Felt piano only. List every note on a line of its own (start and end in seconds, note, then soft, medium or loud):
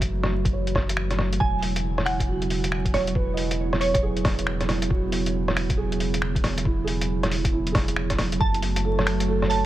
0.00 1.42 B4 medium
0.00 1.42 D#5 medium
0.00 1.42 E5 medium
0.53 1.17 C#5 soft
2.28 2.92 F#4 soft
3.15 3.79 B4 medium
3.34 3.94 D#5 soft
4.03 4.67 G#4 medium
4.91 5.55 F#4 medium
5.77 6.42 G#4 medium
6.65 7.29 E4 medium
6.84 7.45 G#4 medium
7.53 8.17 E4 medium
7.72 8.32 G#4 medium
8.85 9.27 A4 medium
9.28 9.66 A4 medium
9.47 9.66 C#5 medium